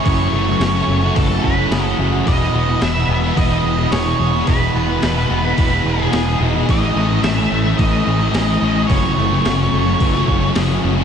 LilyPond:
<<
  \new Staff \with { instrumentName = "Lead electric guitar" } { \time 4/4 \key e \major \tempo 4 = 109 cis''2 a'8 b'4 r8 | dis''4 e''4 dis''4 cis''4 | b'2 b'8 gis'4 r8 | dis''4 e''4 dis''2 |
cis''2. r4 | }
  \new Staff \with { instrumentName = "Clean electric guitar" } { \time 4/4 \key e \major e8 a8 cis'8 a8 e8 cis'8 gis'8 cis'8 | r8 b4 b4. gis'4~ | gis'8 b4 b4. gis'8 dis'8 | e8 a8 cis'8 a8 e8 cis'8 gis'8 cis'8 |
e8 a8 cis'8 a8 e8 cis'8 gis'8 cis'8 | }
  \new Staff \with { instrumentName = "Overdriven electric guitar" } { \time 4/4 \key e \major <fis, cis fis a cis' fis'>8 <fis a cis' fis'>16 <fis a cis' fis'>16 <fis, cis fis a cis' fis'>16 <fis a cis' fis'>8 <fis a cis' fis'>8 <fis a cis' fis'>16 <fis a cis' fis'>16 <fis a cis' fis'>16 <fis, cis fis a cis' fis'>8 <fis a cis' fis'>16 <fis a cis' fis'>16 | <e, b, e gis b e'>8 <e gis b e'>16 <e gis b e'>16 <e, b, e gis b e'>16 <e gis b e'>8 <e gis b e'>8 <e gis b e'>16 <e gis b e'>16 <e gis b e'>16 <e, b, e gis b e'>8 <e gis b e'>16 <e gis b e'>16 | <e, b, e gis b e'>8 <e gis b e'>16 <e gis b e'>16 <e, b, e gis b e'>16 <e gis b e'>8 <e gis b e'>8 <e gis b e'>16 <e gis b e'>16 <e gis b e'>16 <e, b, e gis b e'>8 <e gis b e'>16 <e gis b e'>16 | <a, e a cis' e'>8 <e a cis' e'>16 <a cis' e'>16 <a, e a cis' e'>16 <a cis' e'>8 <a cis' e'>8 <a cis' e'>16 <e a cis' e'>16 <a cis' e'>16 <a, e a cis' e'>8 <e a cis' e'>16 <a cis' e'>16 |
<fis, cis fis a cis' fis'>8 <fis a cis' fis'>16 <fis a cis' fis'>16 <fis, cis fis a cis' fis'>16 <fis a cis' fis'>8 <fis a cis' fis'>8 <fis a cis' fis'>16 <fis a cis' fis'>16 <fis a cis' fis'>16 <fis, cis fis a cis' fis'>8 <fis a cis' fis'>16 <fis a cis' fis'>16 | }
  \new Staff \with { instrumentName = "Distorted electric guitar" } { \clef bass \time 4/4 \key e \major <fis, cis fis>8 <fis, cis fis>16 <cis fis>8. <fis, cis fis>16 <cis fis>16 <fis, cis fis>16 <cis fis>16 <fis, cis fis>16 <cis fis>16 <fis, cis fis>8 <fis, cis fis>16 <cis fis>16 | <e, b, e>8 <e, b, e>16 <b, e>8. <e, b, e>16 <b, e>16 <e, b, e>16 <b, e>16 <e, b, e>16 <b, e>16 <e, b, e>8 <e, b, e>16 <b, e>16 | <e, b, e>8 <e, b, e>16 <b, e>8. <e, b, e>16 <b, e>16 <e, b, e>16 <b, e>16 <e, b, e>16 <b, e>16 <e, b, e>8 <e, b, e>16 <b, e>16 | <a, e a>8 <a, e a>16 <e a>8. <a, e a>16 <e a>16 <a, e a>16 <e a>16 <a, e a>16 <e a>16 <a, e a>8 <a, e a>16 <e a>16 |
<fis, cis fis>8 <fis, cis fis>16 <cis fis>8. <fis, cis fis>16 <cis fis>16 <fis, cis fis>16 <cis fis>16 <fis, cis fis>16 <cis fis>16 <fis, cis fis>8 <fis, cis fis>16 <cis fis>16 | }
  \new Staff \with { instrumentName = "Fingered electric bass" } { \clef bass \time 4/4 \key e \major fis,,8 fis,,8 fis,,8 fis,,8 fis,,8 fis,,8 fis,,8 fis,,8 | e,,8 e,,8 e,,8 e,,8 e,,8 e,,8 e,,8 e,,8 | e,,8 e,,8 e,,8 e,,8 e,,8 e,,8 e,,8 e,,8 | a,,8 a,,8 a,,8 a,,8 a,,8 a,,8 a,,8 a,,8 |
fis,,8 fis,,8 fis,,8 fis,,8 fis,,8 fis,,8 fis,,8 fis,,8 | }
  \new DrumStaff \with { instrumentName = "Drums" } \drummode { \time 4/4 <hho bd>4 <hho sn>4 <hho bd>8 bd8 <hho sn>4 | <hho bd>4 <hho sn>4 <hho bd>4 <hho sn>4 | <hho bd>4 <hho sn>4 <hho bd>4 <hho sn>4 | <hho bd>4 <hho sn>4 <hho bd>4 <hho sn>4 |
<hho bd>4 <hho sn>4 <hho bd>8 bd8 <hho sn>4 | }
>>